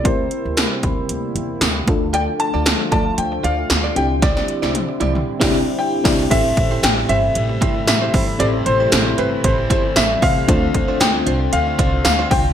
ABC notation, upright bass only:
X:1
M:4/4
L:1/16
Q:"Swing 16ths" 1/4=115
K:Cmix
V:1 name="Upright bass" clef=bass
D,,2 z D,,2 z D,,2 D,,2 E,,2 D,,2 D,,2- | D,,2 z D,,2 z D,,2 D,,2 D,,2 D,,2 C,,2- | C,,2 z C,,2 z C,,2 z C,,2 z3 C,,2 | [K:Aphr] A,,,2 A,,,2 A,,,2 G,,,2 A,,,2 G,,,2 A,,,2 G,,,2 |
A,,,2 A,,,2 A,,,2 G,,,2 A,,,2 G,,,2 A,,,2 C,,2 | D,,2 D,,2 D,,2 C,,2 D,,2 C,,2 D,,2 C,,2 |]